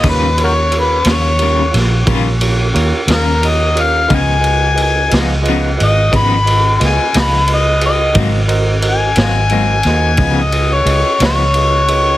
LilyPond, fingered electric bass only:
\new Staff \with { instrumentName = "Fingered electric bass" } { \clef bass \time 12/8 \key des \major \tempo 4. = 59 ees,4. ees,4 bes,,8 bes,,4 ees,16 r16 ees,4. | des,4. des,4 aes,,8 aes,,4 des,16 r16 des,4. | aes,,4. aes,,4 ees,8 des,4 des,16 r16 des,4. | }